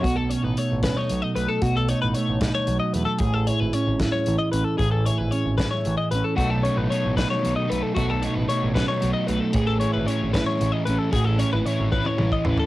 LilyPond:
<<
  \new Staff \with { instrumentName = "Clean electric guitar" } { \time 6/8 \key b \mixolydian \tempo 4. = 76 fis'16 a'16 cis''16 b'16 cis''8 b'16 cis''8 dis''16 b'16 a'16 | fis'16 a'16 cis''16 b'16 cis''8 b'16 cis''8 dis''16 b'16 a'16 | gis'16 a'16 cis''16 b'16 cis''8 b'16 cis''8 dis''16 b'16 a'16 | gis'16 a'16 cis''16 b'16 cis''8 b'16 cis''8 dis''16 b'16 a'16 |
fis'16 a'16 cis''16 b'16 cis''8 b'16 cis''8 dis''16 b'16 a'16 | fis'16 a'16 cis''16 b'16 cis''8 b'16 cis''8 dis''16 b'16 a'16 | gis'16 a'16 cis''16 b'16 cis''8 b'16 cis''8 dis''16 b'16 a'16 | gis'16 a'16 cis''16 b'16 cis''8 b'16 cis''8 dis''16 b'16 a'16 | }
  \new Staff \with { instrumentName = "Clean electric guitar" } { \time 6/8 \key b \mixolydian << { <a fis'>16 a'16 cis'16 dis'16 a8 cis'16 dis'8. a8 | fis'16 a'16 dis'8 a8 dis'4 a8 | gis'8 e'8 cis'8 e'4 cis'8 | gis'8 e'8 cis'8 cis'16 e'8. cis'8 |
<fis a dis' a'>8 cis'16 dis'16 a8 dis'4 a8 | a'8 dis'8 a8 cis'16 dis'8. a8 | gis'8 e'8 cis'8 e'4 cis'8 | fis'16 gis'16 cis'16 e'16 cis'8 cis'16 e'8. cis'8 | } \\ { b,2 fis4 | b,2 fis4 | a,2 e4 | a,2 e4 |
b,2 fis4 | b,2 fis4 | a,2 e4 | a,2 e4 | } >> }
  \new Staff \with { instrumentName = "Overdriven electric guitar" } { \time 6/8 \key b \mixolydian r2. | r2. | r2. | r2. |
<b, fis a dis'>8 <b, fis a dis'>8 <b, fis a dis'>8 <b, fis a dis'>8 <b, fis a dis'>8 <b, fis a dis'>8 | <b, fis a dis'>8 <b, fis a dis'>8 <b, fis a dis'>8 <b, fis a dis'>8 <b, fis a dis'>8 <b, fis a dis'>8 | <e a cis' e'>8 <e a cis' e'>8 <e a cis' e'>8 <e a cis' e'>8 <e a cis' e'>8 <e a cis' e'>8 | <e a cis' e'>8 <e a cis' e'>8 <e a cis' e'>8 <e a cis' e'>8 <e a cis' e'>8 <e a cis' e'>8 | }
  \new Staff \with { instrumentName = "Picked electric bass" } { \clef bass \time 6/8 \key b \mixolydian b,,8. a,,16 r16 a,,8 r16 b,,16 r16 b,,16 r16 | b,,8. a,,16 r16 a,,8 r16 b,,16 r16 e,16 r16 | a,,8. gis,,16 r16 gis,,8 r16 a,,16 r16 a,,16 r16 | a,,8. gis,,16 r16 gis,,8 r16 a,,16 r16 a,,16 r16 |
b,,8. a,,16 r16 a,,8 r16 b,,16 r16 b,,16 r16 | b,,8. a,,16 r16 a,,8 r16 b,,16 r16 b,,16 r16 | a,,8. gis,,16 r16 gis,,8 r16 a,,16 r16 a,,16 r16 | a,,8. gis,,16 r16 gis,,8 r16 a,,16 r16 a,,16 r16 | }
  \new DrumStaff \with { instrumentName = "Drums" } \drummode { \time 6/8 <hh bd>8 hh8 hh8 <hh bd sn>8 hh8 hh8 | <hh bd>8 hh8 hh8 <hh bd sn>8 hh8 hh8 | <hh bd>8 hh8 hh8 <hh bd sn>8 hh8 hh8 | <hh bd>8 hh8 hh8 <hh bd sn>8 hh8 hh8 |
<hh bd>8 hh8 hh8 <hh bd sn>8 hh8 hh8 | <hh bd>8 hh8 hh8 <hh bd sn>8 hh8 hh8 | <hh bd>8 hh8 hh8 <hh bd sn>8 hh8 hh8 | <hh bd>8 hh8 hh8 <bd tommh>16 tommh16 toml16 bd16 tomfh16 tomfh16 | }
>>